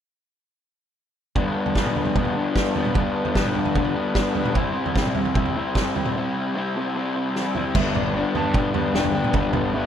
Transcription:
1.36 overdriven electric guitar G2 D3 G3 B3 D4, kick, floor tom
1.66 floor tom
1.75 overdriven electric guitar G2 D3 G3 B3 D4, kick, snare
1.86 mid tom
1.96 overdriven electric guitar G3 B3 D4, floor tom
2.05 floor tom
2.15 overdriven electric guitar D3 G3 B3 D4, kick, floor tom, mid tom
2.25 floor tom
2.35 overdriven electric guitar G3 B3 D4
2.56 kick, snare
2.76 overdriven electric guitar G3 B3 D4, floor tom
2.85 mid tom
2.95 overdriven electric guitar G2 D3 G3 B3 D4, kick, floor tom
3.25 floor tom
3.35 overdriven electric guitar G2 D3 G3 B3 D4, kick, snare
3.45 mid tom
3.55 overdriven electric guitar G3 B3 D4, floor tom
3.65 floor tom
3.75 overdriven electric guitar D3 G3 B3 D4, kick, floor tom, mid tom
3.85 floor tom
3.95 overdriven electric guitar G3 B3 D4
4.15 kick, snare
4.35 overdriven electric guitar G3 B3 D4, floor tom
4.45 mid tom
4.55 overdriven electric guitar C3 G3 C4 E4, kick, floor tom
4.86 floor tom
4.96 overdriven electric guitar C3 G3 C4 E4, kick, snare
5.06 mid tom
5.15 overdriven electric guitar G3 C4 E4, floor tom
5.25 floor tom
5.35 overdriven electric guitar C3 G3 C4 E4, kick, floor tom, mid tom
5.45 floor tom
5.56 overdriven electric guitar G3 C4 E4
5.75 kick, snare
5.95 overdriven electric guitar G3 C4 E4, floor tom
6.05 mid tom
6.16 overdriven electric guitar C3 G3 C4 E4
6.55 overdriven electric guitar C3 G3 C4 E4
6.76 overdriven electric guitar G3 C4 E4
6.95 overdriven electric guitar C3 G3 C4 E4
7.15 overdriven electric guitar G3 C4 E4
7.36 snare
7.55 overdriven electric guitar G3 C4 E4, floor tom
7.75 picked electric bass G1, overdriven electric guitar G2 D3 G3 B3 D4, upright piano E5, kick, floor tom, crash
7.95 overdriven electric guitar G3 B3 D4, upright piano D5, floor tom, mid tom
8.13 picked electric bass G1, overdriven electric guitar D3 G3 B3 D4
8.34 picked electric bass G2, overdriven electric guitar G2 D3 G3 B3 D4, upright piano A5, floor tom
8.54 overdriven electric guitar D3 G3 B3 D4, kick, mid tom
8.74 overdriven electric guitar G2 D3 G3 B3 D4, floor tom
8.93 picked electric bass E1, overdriven electric guitar D3 G3 B3 D4, upright piano G5, snare
9.04 picked electric bass G1, floor tom
9.14 overdriven electric guitar G3 B3 D4, upright piano G5
9.24 mid tom
9.33 picked electric bass G1, overdriven electric guitar G2 D3 G3 B3 D4, kick, floor tom
9.53 overdriven electric guitar G3 B3 D4, floor tom, mid tom
9.74 picked electric bass G1, overdriven electric guitar D3 G3 B3 D4, upright piano E5

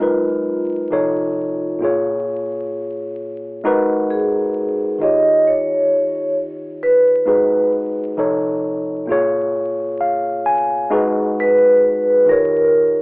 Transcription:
Already playing: vibraphone F4
0.00 tine electric piano F#3 G#3 D#4 A#4 B4
0.91 tine electric piano C3 F3 D#4 A4 C#5
1.79 tine electric piano A#2 A#3 F4
1.83 tine electric piano G#4 C#5
3.64 tine electric piano G#3 D#4 F#4 A#4 B4
4.10 vibraphone G#4
4.98 tine electric piano D#3 D#4 F4, vibraphone D#5
5.03 tine electric piano G4 C#5
5.47 vibraphone C#5
6.83 vibraphone B4
7.26 tine electric piano G#3 D#4 F#4 G#4 B4
8.17 tine electric piano C3 F3 D#4 A4 C#5
9.06 tine electric piano A#2 A#3 F4
9.10 tine electric piano G#4 C#5
10.01 tine electric piano F5
10.46 tine electric piano G#5
10.90 tine electric piano G#3 D#4 F#4 G#4 B4
11.40 vibraphone B4
12.26 tine electric piano D#3 D#4 F4 G4, vibraphone A#4
12.31 tine electric piano C#5

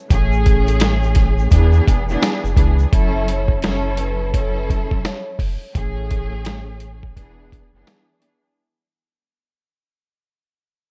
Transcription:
0.09 sub bass A1, string section A2 A3 C#4 G#4, kick, closed hi-hat, shaker
0.33 shaker
0.46 kick, closed hi-hat, shaker
0.67 closed hi-hat, shaker
0.80 snare, closed hi-hat, shaker
1.03 shaker
1.15 kick, snare, closed hi-hat
1.39 shaker
1.50 sub bass E2, string section E3 B3 D4 G#4, kick, closed hi-hat, shaker
1.73 shaker
1.88 sub bass E1, kick, closed hi-hat
2.09 string section E3 B3 D4 G#4, shaker
2.22 snare, closed hi-hat, shaker
2.44 sub bass F#1, shaker
2.54 sub bass C#2, string section E3 B3 D4 G#4, kick, closed hi-hat
2.79 shaker
2.90 sub bass F#1, string section F#3 C#4 E4 A4, kick, closed hi-hat
3.14 vibraphone E5
3.28 vibraphone C#5, closed hi-hat
3.48 kick
3.62 string section F#3 C#4 E4 A4, snare, closed hi-hat
3.97 vibraphone B4, closed hi-hat
4.33 string section F#3 C#4 E4 A4, vibraphone C#5, kick, closed hi-hat
4.54 vibraphone B4
4.70 vibraphone A4, kick, closed hi-hat
4.91 sub bass E1, kick
5.05 vibraphone C#5, snare, closed hi-hat
5.39 sub bass F#1, kick, open hi-hat
5.73 sub bass A1, string section A2 A3 C#4 G#4, kick, closed hi-hat
6.11 kick, closed hi-hat
6.45 snare, closed hi-hat
6.80 closed hi-hat
7.03 kick
7.15 sub bass E1, string section E3 B3 D4 G#4, kick, closed hi-hat
7.52 kick, closed hi-hat
7.73 sub bass F#1, string section E3 B3 D4 G#4
7.87 snare, closed hi-hat
8.19 string section E3 B3 D4 G#4, closed hi-hat

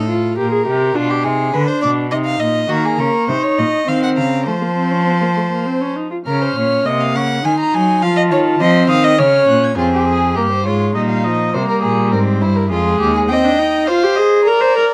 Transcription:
Already playing: cello A2, violin A4
0.09 viola F4
0.38 cello A#2, viola G4, violin A#4
0.52 viola G#4
0.66 cello C3, viola G4
0.95 cello B2, viola D4, violin F4
1.10 violin G4
1.24 cello C3, viola D#4, violin G#4
1.54 cello D3, viola D4, violin B4
1.68 violin C5
1.82 cello B2, violin D5
2.11 cello C3, viola D#4, violin D#5
2.25 violin F5
2.40 cello A#2, violin D#5
2.69 cello D#3, viola A#3, violin F#4 A#5
2.85 violin G#4
2.99 cello C#3, violin A#4 C#6
3.28 cello C3, viola D#4, violin C5
3.44 violin C#5
3.59 cello A#2, violin D#5
3.87 cello D#3, viola C4, violin F5 C6
4.03 violin F#5
4.17 cello C#3, violin F5 A#5
4.46 cello F3, viola A3, violin C5 A5
4.61 viola A#3
4.77 viola C4
4.91 viola C#4
5.06 viola C4
5.21 viola A#3
5.36 viola A3
5.51 viola A#3
5.66 viola C4
5.81 viola C#4
5.96 viola D#4
6.11 viola F4
6.26 cello C#3, viola C#4, violin A#4 F6
6.42 violin C5
6.56 cello A#2, violin C#5
6.85 cello C3, viola A#3, violin D#5 D#6
7.01 violin F5
7.15 cello C#3, violin F#5 C#6
7.44 cello D#3, viola D#4, violin G#5 C6
7.60 violin A#5
7.73 cello F#3, violin G#5
8.02 cello F3, viola F4, violin F5 A5
8.17 violin D#5
8.32 cello D#3, violin C#5
8.60 cello F3, viola C4, violin D#5 C6
8.89 cello D#3, violin F5 D#6
9.04 violin D#5
9.18 cello C#3, viola C#4, violin C#5 F6
9.49 cello A#2, violin F#6
9.64 violin G#6
9.78 cello F2, viola C4, violin F4 G#4
9.94 violin G4
10.07 violin G#4
10.35 cello G2, viola A#3, violin G4 A#4
10.51 violin C5
10.65 cello G#2, viola G#3, violin F4 C#5
10.95 cello A#2, viola G3, violin D#4 D#5
11.10 violin F5
11.24 viola F3, violin D#5
11.54 cello C3, viola G3, violin A#3 C5
11.68 violin A#4
11.82 cello A#2, violin G#4
12.12 cello G#2, violin C4 A#4
12.41 cello G2, violin E4 C5
12.56 violin A#4
12.69 cello F2, viola G#3, violin F4 G#4
13.00 cello D#2, violin G4
13.15 violin G#4
13.28 viola C4, violin D#5 G5
13.45 viola D4
13.59 viola D#4
13.87 viola F4, violin C5 F5
14.04 viola G4
14.15 viola G#4, violin D#5
14.44 violin A#4 D5, viola A#4
14.61 viola C5
14.76 viola A#4

